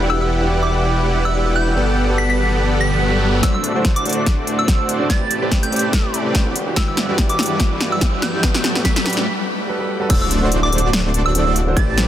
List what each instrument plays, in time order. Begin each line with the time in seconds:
Already playing: detuned saw bass E1, supersaw synth E4 G4 B4 D5 F#5
0.00 grand piano D4 F#4 G4
0.09 grand piano E3 D4 F#4 G4, synth bell E6, riser
0.21 synth bell E6
0.41 grand piano E3 D4 F#4 G4
0.63 synth bell D6
0.71 grand piano E3 D4 F#4 G4
1.25 synth bell E6
1.34 grand piano E3 D4 F#4 G4
1.45 grand piano E3 D4 F#4 G4
1.56 synth bell G6
1.66 grand piano E3 D4 F#4 G4
1.75 detuned saw bass G1, grand piano G3 F#4 A4 B4, supersaw synth B3 G4 A4 D5 F#5
2.08 grand piano G3 F#4 A4 B4
2.18 synth bell B6
2.30 synth bell B6
2.38 grand piano G3 F#4 A4 B4
2.81 synth bell B6
3.00 grand piano G3 F#4 A4 B4
3.12 grand piano G3 F#4 A4 B4
3.33 grand piano G3 F#4 A4 B4
3.42 detuned saw bass D1, grand piano D3 D4 F#4 C5, supersaw synth A3 D4 F#4 D5, synth bell E6, kick, snare, closed hi-hat, riser
3.54 synth bell E6
3.64 closed hi-hat
3.74 grand piano D3 D4 F#4 C5, supersaw synth A3 D4 F#4 C5 D5
3.85 kick, snare, closed hi-hat
3.96 synth bell D6, closed hi-hat
4.05 grand piano D3 D4 F#4 C5, closed hi-hat
4.09 closed hi-hat
4.13 closed hi-hat
4.26 kick, snare, closed hi-hat
4.47 closed hi-hat
4.59 synth bell E6
4.67 grand piano D3 D4 F#4 C5, kick, snare, closed hi-hat
4.78 grand piano D3 D4 F#4 C5
4.89 closed hi-hat
4.99 grand piano D3 D4 F#4 C5
5.09 detuned saw bass A1, grand piano A3 B4 C5, supersaw synth C4 B4, synth bell A6, kick, snare, closed hi-hat
5.31 closed hi-hat
5.41 grand piano A3 G4 B4 C5 D5, supersaw synth A3 C4 G4 B4 D5
5.51 kick, snare, closed hi-hat
5.63 synth bell G6, closed hi-hat
5.71 grand piano A3 G4 B4 C5 D5, closed hi-hat
5.76 closed hi-hat
5.79 closed hi-hat
5.93 kick, snare, closed hi-hat
6.14 closed hi-hat
6.33 grand piano A3 G4 B4 C5 D5, kick, snare, closed hi-hat
6.45 grand piano E3 D4 F#4 G4
6.56 detuned saw bass E1, closed hi-hat
6.66 grand piano E3 D4 F#4 G4
6.75 grand piano E3 D4 G4, supersaw synth G3 E4 F#4 B4 D5, synth bell E6, kick, snare, closed hi-hat
6.88 synth bell E6
6.97 snare, closed hi-hat
7.08 grand piano E3 D4 F#4 G4, supersaw synth G3 E4 F#4 B4 D5
7.18 kick, snare, closed hi-hat
7.29 synth bell D6, closed hi-hat
7.38 grand piano E3 D4 F#4 G4, snare, closed hi-hat
7.43 closed hi-hat
7.46 closed hi-hat
7.60 kick, snare, closed hi-hat
7.81 snare, closed hi-hat
7.92 synth bell E6
8.00 grand piano E3 D4 F#4 G4, kick, snare, closed hi-hat
8.12 grand piano E3 D4 F#4 G4
8.22 synth bell G6, snare, closed hi-hat
8.33 grand piano E3 D4 F#4 G4
8.42 detuned saw bass G1, grand piano G3 F#4 A4 B4, supersaw synth A3 D5, kick, snare, closed hi-hat
8.54 snare
8.64 snare, closed hi-hat
8.74 grand piano G3 F#4 A4 B4, supersaw synth A3 F#4 G4 B4 D5, snare
8.85 synth bell B6, kick, snare, closed hi-hat
8.96 synth bell B6, snare, closed hi-hat
9.05 grand piano G3 F#4 A4 B4, snare, closed hi-hat
9.10 closed hi-hat
9.13 closed hi-hat
9.17 snare
9.67 grand piano G3 F#4 A4 B4
9.79 grand piano G3 F#4 A4 B4
10.00 grand piano G3 F#4 A4 B4
10.09 detuned saw bass D1, grand piano D3 D4 F#4, supersaw synth A3 D4 F#4 C5 D5, synth bell E6, kick, closed hi-hat, crash, impact
10.22 synth bell E6
10.31 closed hi-hat
10.41 grand piano D3 D4 F#4 C5, supersaw synth A3 D4 F#4 C5 D5
10.52 closed hi-hat
10.63 synth bell D6
10.72 grand piano D3 D4 F#4 C5, closed hi-hat
10.78 closed hi-hat
10.93 snare, closed hi-hat
11.14 closed hi-hat
11.26 synth bell E6
11.34 grand piano D3 D4 F#4 C5, closed hi-hat
11.46 grand piano D3 D4 F#4 C5, supersaw synth A3 D4 F#4 C5 D5
11.56 closed hi-hat
11.66 grand piano D3 D4 F#4 C5
11.76 detuned saw bass A1, grand piano A3 G4 B4 C5 D5, supersaw synth A3 C4 G4 B4 D5, synth bell A6, kick, closed hi-hat
11.98 snare, closed hi-hat